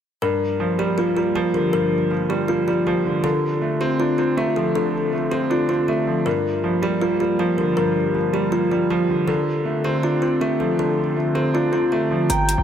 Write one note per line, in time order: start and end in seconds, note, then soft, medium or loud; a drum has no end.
0.22 1.17 G2 medium
0.22 3.21 F3 medium
0.22 3.21 A#3 medium
0.22 3.21 G4 medium
0.22 0.75 A#4 medium
0.60 1.34 F3 medium
0.79 1.15 G3 medium
0.79 0.95 G4 medium
0.98 1.92 A#3 medium
0.98 1.13 F4 medium
1.17 2.11 G3 medium
1.17 1.32 F4 medium
1.35 2.09 F3 loud
1.35 1.51 G4 medium
1.54 2.48 D3 medium
1.54 1.70 A#4 medium
1.73 2.68 G2 medium
1.73 2.26 A#4 loud
2.11 2.85 F3 medium
2.29 2.66 G3 medium
2.29 2.45 G4 medium
2.48 3.24 A#3 medium
2.48 2.64 F4 medium
2.67 3.24 G3 medium
2.67 2.83 F4 medium
2.87 3.24 F3 medium
2.87 3.02 G4 medium
3.06 3.22 D3 medium
3.24 4.18 D3 medium
3.24 6.23 D3 medium
3.24 6.23 C4 medium
3.24 6.23 F4 medium
3.24 3.77 A4 loud
3.62 4.36 A3 medium
3.81 4.17 C4 loud
3.81 3.96 G4 medium
4.00 4.94 D4 medium
4.00 4.15 F4 medium
4.18 5.13 C4 medium
4.18 4.34 F4 medium
4.37 5.11 A3 loud
4.37 4.53 G4 medium
4.56 5.51 F3 medium
4.56 4.72 A4 medium
4.75 5.70 D3 medium
4.75 5.28 A4 loud
5.13 5.87 A3 medium
5.31 5.67 C4 medium
5.31 5.47 G4 medium
5.50 6.26 D4 medium
5.50 5.66 F4 medium
5.69 6.26 C4 medium
5.69 5.85 F4 medium
5.88 6.26 A3 medium
5.88 6.04 G4 medium
6.07 6.26 F3 medium
6.26 7.20 G2 medium
6.26 9.25 F3 medium
6.26 9.25 A#3 medium
6.26 9.25 G4 medium
6.26 6.79 A#4 medium
6.64 7.38 F3 medium
6.82 7.19 G3 medium
6.82 6.98 G4 medium
7.02 7.96 A#3 medium
7.02 7.17 F4 medium
7.20 8.15 G3 medium
7.20 7.36 F4 medium
7.39 8.13 F3 medium
7.39 7.55 G4 medium
7.58 8.52 D3 medium
7.58 7.74 A#4 medium
7.77 8.71 G2 medium
7.77 8.30 A#4 loud
8.15 8.89 F3 medium
8.33 8.70 G3 medium
8.33 8.49 G4 medium
8.52 9.28 A#3 medium
8.52 8.68 F4 medium
8.71 9.28 G3 medium
8.71 8.87 F4 medium
8.90 9.28 F3 medium
8.90 9.06 G4 medium
9.09 9.26 D3 medium
9.28 10.22 D3 medium
9.28 12.27 D3 medium
9.28 12.27 C4 medium
9.28 12.27 F4 medium
9.28 9.81 A4 loud
9.65 10.39 A3 medium
9.84 10.21 C4 loud
9.84 10.00 G4 medium
10.03 10.98 D4 medium
10.03 10.19 F4 medium
10.22 11.17 C4 medium
10.22 10.38 F4 medium
10.41 11.15 A3 medium
10.41 10.57 G4 medium
10.60 11.54 F3 medium
10.60 10.76 A4 medium
10.79 11.73 D3 medium
10.79 11.32 A4 medium
11.17 11.91 A3 medium
11.35 11.71 C4 medium
11.35 11.51 G4 medium
11.54 12.30 D4 medium
11.54 11.70 F4 medium
11.73 12.29 C4 medium
11.73 11.88 F4 medium
11.92 12.30 A3 medium
11.92 12.08 G4 medium
12.11 12.30 F3 medium
12.30 12.57 G1 loud
12.30 12.63 F3 medium
12.30 12.63 A#3 medium
12.30 12.63 G4 medium
12.30 12.63 G5 loud
12.30 12.63 A#5 loud
12.30 closed hi-hat medium
12.49 closed hi-hat medium
12.58 12.63 G1 loud